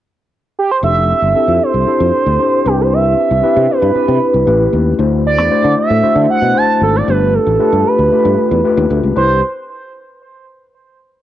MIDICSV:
0, 0, Header, 1, 5, 480
1, 0, Start_track
1, 0, Key_signature, 0, "major"
1, 0, Tempo, 519931
1, 769, Time_signature, 4, 2, 24, 8
1, 10358, End_track
2, 0, Start_track
2, 0, Title_t, "Analog synth lead"
2, 0, Program_c, 0, 81
2, 543, Note_on_c, 0, 67, 91
2, 648, Note_off_c, 0, 67, 0
2, 660, Note_on_c, 0, 72, 83
2, 712, Note_off_c, 0, 72, 0
2, 776, Note_on_c, 0, 76, 105
2, 1503, Note_on_c, 0, 72, 102
2, 1517, Note_off_c, 0, 76, 0
2, 2463, Note_on_c, 0, 67, 94
2, 2477, Note_off_c, 0, 72, 0
2, 2591, Note_on_c, 0, 72, 89
2, 2605, Note_off_c, 0, 67, 0
2, 2706, Note_on_c, 0, 76, 108
2, 2720, Note_off_c, 0, 72, 0
2, 3424, Note_on_c, 0, 71, 95
2, 3438, Note_off_c, 0, 76, 0
2, 4378, Note_off_c, 0, 71, 0
2, 4862, Note_on_c, 0, 74, 86
2, 5304, Note_off_c, 0, 74, 0
2, 5345, Note_on_c, 0, 76, 105
2, 5786, Note_off_c, 0, 76, 0
2, 5819, Note_on_c, 0, 78, 106
2, 6069, Note_on_c, 0, 81, 106
2, 6082, Note_off_c, 0, 78, 0
2, 6301, Note_off_c, 0, 81, 0
2, 6308, Note_on_c, 0, 69, 90
2, 6423, Note_on_c, 0, 74, 92
2, 6437, Note_off_c, 0, 69, 0
2, 6549, Note_on_c, 0, 71, 105
2, 6563, Note_off_c, 0, 74, 0
2, 6779, Note_on_c, 0, 69, 88
2, 6792, Note_off_c, 0, 71, 0
2, 7263, Note_on_c, 0, 71, 85
2, 7277, Note_off_c, 0, 69, 0
2, 7980, Note_off_c, 0, 71, 0
2, 8465, Note_on_c, 0, 72, 83
2, 8683, Note_off_c, 0, 72, 0
2, 10358, End_track
3, 0, Start_track
3, 0, Title_t, "Tine electric piano"
3, 0, Program_c, 1, 4
3, 762, Note_on_c, 1, 60, 64
3, 766, Note_on_c, 1, 62, 58
3, 772, Note_on_c, 1, 64, 55
3, 772, Note_on_c, 1, 67, 57
3, 777, Note_on_c, 1, 69, 67
3, 943, Control_c, 1, 64, 127
3, 1132, Note_off_c, 1, 60, 0
3, 1135, Note_off_c, 1, 62, 0
3, 1138, Note_off_c, 1, 64, 0
3, 1138, Note_off_c, 1, 67, 0
3, 1140, Note_off_c, 1, 69, 0
3, 1244, Note_on_c, 1, 60, 77
3, 1246, Note_on_c, 1, 62, 75
3, 1249, Note_on_c, 1, 64, 64
3, 1253, Note_on_c, 1, 67, 66
3, 1255, Note_on_c, 1, 69, 82
3, 1614, Note_off_c, 1, 60, 0
3, 1615, Note_off_c, 1, 62, 0
3, 1616, Note_off_c, 1, 64, 0
3, 1618, Note_off_c, 1, 67, 0
3, 1619, Note_off_c, 1, 69, 0
3, 1724, Note_on_c, 1, 60, 70
3, 1725, Note_on_c, 1, 62, 69
3, 1729, Note_on_c, 1, 64, 65
3, 1733, Note_on_c, 1, 67, 61
3, 1734, Note_on_c, 1, 69, 82
3, 2094, Note_off_c, 1, 60, 0
3, 2094, Note_off_c, 1, 62, 0
3, 2096, Note_off_c, 1, 64, 0
3, 2098, Note_off_c, 1, 67, 0
3, 2099, Note_off_c, 1, 69, 0
3, 2200, Note_on_c, 1, 60, 71
3, 2203, Note_on_c, 1, 62, 70
3, 2205, Note_on_c, 1, 64, 62
3, 2211, Note_on_c, 1, 67, 71
3, 2213, Note_on_c, 1, 72, 80
3, 2429, Note_off_c, 1, 60, 0
3, 2436, Note_off_c, 1, 62, 0
3, 2436, Note_off_c, 1, 64, 0
3, 2438, Note_off_c, 1, 67, 0
3, 2440, Note_on_c, 1, 60, 69
3, 2447, Note_on_c, 1, 62, 67
3, 2447, Note_on_c, 1, 64, 67
3, 2449, Note_on_c, 1, 67, 70
3, 2451, Note_off_c, 1, 72, 0
3, 2453, Note_on_c, 1, 71, 79
3, 2462, Control_c, 1, 64, 0
3, 2624, Control_c, 1, 64, 127
3, 3021, Note_off_c, 1, 60, 0
3, 3024, Note_off_c, 1, 62, 0
3, 3024, Note_off_c, 1, 64, 0
3, 3025, Note_off_c, 1, 67, 0
3, 3027, Note_off_c, 1, 71, 0
3, 3157, Note_on_c, 1, 60, 84
3, 3162, Note_on_c, 1, 62, 68
3, 3167, Note_on_c, 1, 64, 71
3, 3169, Note_on_c, 1, 67, 77
3, 3171, Note_on_c, 1, 71, 91
3, 3531, Note_off_c, 1, 60, 0
3, 3533, Note_off_c, 1, 62, 0
3, 3536, Note_off_c, 1, 64, 0
3, 3537, Note_off_c, 1, 67, 0
3, 3538, Note_off_c, 1, 71, 0
3, 3641, Note_on_c, 1, 60, 70
3, 3644, Note_on_c, 1, 62, 74
3, 3646, Note_on_c, 1, 64, 68
3, 3650, Note_on_c, 1, 67, 69
3, 3652, Note_on_c, 1, 71, 81
3, 4014, Note_off_c, 1, 60, 0
3, 4015, Note_off_c, 1, 62, 0
3, 4016, Note_off_c, 1, 64, 0
3, 4018, Note_off_c, 1, 67, 0
3, 4019, Note_off_c, 1, 71, 0
3, 4125, Note_on_c, 1, 57, 77
3, 4128, Note_on_c, 1, 61, 67
3, 4131, Note_on_c, 1, 67, 67
3, 4132, Note_on_c, 1, 64, 70
3, 4134, Note_on_c, 1, 71, 83
3, 4140, Control_c, 1, 64, 0
3, 4312, Control_c, 1, 64, 127
3, 4496, Note_off_c, 1, 57, 0
3, 4497, Note_off_c, 1, 61, 0
3, 4499, Note_off_c, 1, 64, 0
3, 4499, Note_off_c, 1, 67, 0
3, 4500, Note_off_c, 1, 71, 0
3, 4605, Note_on_c, 1, 62, 74
3, 4606, Note_on_c, 1, 57, 77
3, 4607, Note_on_c, 1, 64, 73
3, 4611, Note_on_c, 1, 66, 72
3, 4615, Note_on_c, 1, 72, 80
3, 4621, Control_c, 1, 64, 0
3, 4773, Control_c, 1, 64, 127
3, 4976, Note_off_c, 1, 62, 0
3, 4977, Note_off_c, 1, 57, 0
3, 4977, Note_off_c, 1, 64, 0
3, 4979, Note_off_c, 1, 66, 0
3, 4981, Note_off_c, 1, 72, 0
3, 5086, Note_on_c, 1, 57, 85
3, 5087, Note_on_c, 1, 62, 72
3, 5091, Note_on_c, 1, 64, 72
3, 5092, Note_on_c, 1, 66, 78
3, 5095, Note_on_c, 1, 72, 93
3, 5457, Note_off_c, 1, 57, 0
3, 5457, Note_off_c, 1, 62, 0
3, 5460, Note_off_c, 1, 64, 0
3, 5460, Note_off_c, 1, 66, 0
3, 5461, Note_off_c, 1, 72, 0
3, 5556, Note_on_c, 1, 57, 76
3, 5563, Note_on_c, 1, 62, 71
3, 5567, Note_on_c, 1, 64, 65
3, 5567, Note_on_c, 1, 66, 71
3, 5568, Note_on_c, 1, 72, 82
3, 5933, Note_off_c, 1, 57, 0
3, 5936, Note_off_c, 1, 62, 0
3, 5938, Note_off_c, 1, 64, 0
3, 5938, Note_off_c, 1, 66, 0
3, 5939, Note_off_c, 1, 72, 0
3, 6039, Note_on_c, 1, 57, 63
3, 6040, Note_on_c, 1, 62, 57
3, 6044, Note_on_c, 1, 64, 58
3, 6047, Note_on_c, 1, 72, 77
3, 6050, Note_on_c, 1, 66, 60
3, 6414, Note_off_c, 1, 57, 0
3, 6415, Note_off_c, 1, 62, 0
3, 6417, Note_off_c, 1, 64, 0
3, 6418, Note_off_c, 1, 72, 0
3, 6420, Note_off_c, 1, 66, 0
3, 6522, Note_on_c, 1, 57, 69
3, 6527, Note_on_c, 1, 62, 64
3, 6530, Note_on_c, 1, 65, 61
3, 6531, Note_on_c, 1, 67, 60
3, 6537, Note_on_c, 1, 71, 72
3, 6545, Control_c, 1, 64, 0
3, 6691, Control_c, 1, 64, 127
3, 6896, Note_off_c, 1, 57, 0
3, 6899, Note_off_c, 1, 62, 0
3, 6900, Note_off_c, 1, 65, 0
3, 6900, Note_off_c, 1, 67, 0
3, 6904, Note_off_c, 1, 71, 0
3, 7008, Note_on_c, 1, 57, 81
3, 7011, Note_on_c, 1, 62, 73
3, 7011, Note_on_c, 1, 65, 73
3, 7018, Note_on_c, 1, 67, 80
3, 7018, Note_on_c, 1, 71, 91
3, 7379, Note_off_c, 1, 57, 0
3, 7381, Note_off_c, 1, 62, 0
3, 7381, Note_off_c, 1, 65, 0
3, 7384, Note_off_c, 1, 67, 0
3, 7384, Note_off_c, 1, 71, 0
3, 7496, Note_on_c, 1, 57, 81
3, 7500, Note_on_c, 1, 62, 74
3, 7500, Note_on_c, 1, 65, 71
3, 7506, Note_on_c, 1, 69, 66
3, 7507, Note_on_c, 1, 67, 72
3, 7558, Note_off_c, 1, 69, 0
3, 7564, Note_on_c, 1, 71, 83
3, 7863, Note_off_c, 1, 57, 0
3, 7865, Note_off_c, 1, 62, 0
3, 7865, Note_off_c, 1, 65, 0
3, 7869, Note_off_c, 1, 67, 0
3, 7897, Note_off_c, 1, 71, 0
3, 7978, Note_on_c, 1, 57, 77
3, 7980, Note_on_c, 1, 62, 71
3, 7986, Note_on_c, 1, 65, 72
3, 7986, Note_on_c, 1, 67, 68
3, 7989, Note_on_c, 1, 71, 90
3, 8344, Note_off_c, 1, 57, 0
3, 8345, Note_off_c, 1, 62, 0
3, 8348, Note_off_c, 1, 65, 0
3, 8348, Note_off_c, 1, 67, 0
3, 8350, Note_off_c, 1, 71, 0
3, 8455, Note_on_c, 1, 71, 83
3, 8456, Note_on_c, 1, 62, 70
3, 8457, Note_on_c, 1, 60, 72
3, 8457, Note_on_c, 1, 64, 69
3, 8457, Note_on_c, 1, 67, 67
3, 8468, Control_c, 1, 64, 0
3, 8678, Note_off_c, 1, 71, 0
3, 8679, Note_off_c, 1, 60, 0
3, 8679, Note_off_c, 1, 62, 0
3, 8679, Note_off_c, 1, 64, 0
3, 8680, Note_off_c, 1, 67, 0
3, 10358, End_track
4, 0, Start_track
4, 0, Title_t, "Fretless electric bass"
4, 0, Program_c, 2, 35
4, 765, Note_on_c, 2, 29, 95
4, 1031, Note_off_c, 2, 29, 0
4, 1127, Note_on_c, 2, 31, 77
4, 1216, Note_off_c, 2, 31, 0
4, 1364, Note_on_c, 2, 41, 80
4, 1454, Note_off_c, 2, 41, 0
4, 1604, Note_on_c, 2, 36, 73
4, 1694, Note_off_c, 2, 36, 0
4, 1847, Note_on_c, 2, 41, 88
4, 1936, Note_off_c, 2, 41, 0
4, 2087, Note_on_c, 2, 38, 80
4, 2176, Note_off_c, 2, 38, 0
4, 2451, Note_on_c, 2, 36, 89
4, 2892, Note_off_c, 2, 36, 0
4, 3052, Note_on_c, 2, 36, 79
4, 3139, Note_off_c, 2, 36, 0
4, 3289, Note_on_c, 2, 48, 97
4, 3378, Note_off_c, 2, 48, 0
4, 3527, Note_on_c, 2, 43, 92
4, 3616, Note_off_c, 2, 43, 0
4, 3768, Note_on_c, 2, 48, 92
4, 3857, Note_off_c, 2, 48, 0
4, 4007, Note_on_c, 2, 36, 76
4, 4097, Note_off_c, 2, 36, 0
4, 4126, Note_on_c, 2, 33, 94
4, 4305, Note_off_c, 2, 33, 0
4, 4366, Note_on_c, 2, 39, 88
4, 4545, Note_off_c, 2, 39, 0
4, 4605, Note_on_c, 2, 38, 86
4, 4969, Note_off_c, 2, 38, 0
4, 4969, Note_on_c, 2, 40, 81
4, 5058, Note_off_c, 2, 40, 0
4, 5210, Note_on_c, 2, 50, 97
4, 5300, Note_off_c, 2, 50, 0
4, 5449, Note_on_c, 2, 45, 87
4, 5539, Note_off_c, 2, 45, 0
4, 5682, Note_on_c, 2, 50, 99
4, 5775, Note_off_c, 2, 50, 0
4, 5925, Note_on_c, 2, 47, 73
4, 6017, Note_off_c, 2, 47, 0
4, 6289, Note_on_c, 2, 32, 86
4, 6468, Note_off_c, 2, 32, 0
4, 6534, Note_on_c, 2, 31, 99
4, 6800, Note_off_c, 2, 31, 0
4, 6892, Note_on_c, 2, 33, 86
4, 6982, Note_off_c, 2, 33, 0
4, 7131, Note_on_c, 2, 43, 89
4, 7221, Note_off_c, 2, 43, 0
4, 7372, Note_on_c, 2, 38, 81
4, 7462, Note_off_c, 2, 38, 0
4, 7616, Note_on_c, 2, 43, 93
4, 7704, Note_off_c, 2, 43, 0
4, 7858, Note_on_c, 2, 40, 86
4, 7946, Note_off_c, 2, 40, 0
4, 8099, Note_on_c, 2, 39, 100
4, 8186, Note_off_c, 2, 39, 0
4, 8220, Note_on_c, 2, 38, 102
4, 8307, Note_off_c, 2, 38, 0
4, 8341, Note_on_c, 2, 37, 83
4, 8427, Note_off_c, 2, 37, 0
4, 8461, Note_on_c, 2, 36, 83
4, 8681, Note_off_c, 2, 36, 0
4, 10358, End_track
5, 0, Start_track
5, 0, Title_t, "Muted fretless electric bass strokes"
5, 1242, Note_on_c, 9, 29, 41
5, 1334, Note_off_c, 9, 29, 0
5, 1728, Note_on_c, 9, 29, 40
5, 1821, Note_off_c, 9, 29, 0
5, 3171, Note_on_c, 9, 29, 43
5, 3264, Note_off_c, 9, 29, 0
5, 3647, Note_on_c, 9, 29, 46
5, 3739, Note_off_c, 9, 29, 0
5, 5087, Note_on_c, 9, 29, 44
5, 5179, Note_off_c, 9, 29, 0
5, 5568, Note_on_c, 9, 29, 44
5, 5661, Note_off_c, 9, 29, 0
5, 7009, Note_on_c, 9, 29, 47
5, 7102, Note_off_c, 9, 29, 0
5, 7496, Note_on_c, 9, 29, 43
5, 7589, Note_off_c, 9, 29, 0
5, 10358, End_track
0, 0, End_of_file